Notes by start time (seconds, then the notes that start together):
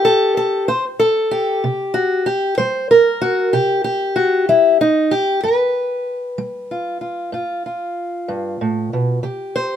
Already playing: F3 G4
0.05 A4
0.37 A4
0.68 F4 C5
0.99 A4
1.31 G4
1.64 C3
1.94 F#4
2.26 G4
2.58 G3 C5
2.91 A#4
3.21 F#4
3.53 C3 G4
3.84 G4
4.16 F#4
4.49 G3 E4
4.81 D#4
5.11 G4
5.43 G2 B4
6.38 G3
6.71 F4
7.01 F4
7.32 G2 F4
7.66 F4
8.28 G2
8.61 A2
8.93 B2
9.23 C3 G4
9.56 C5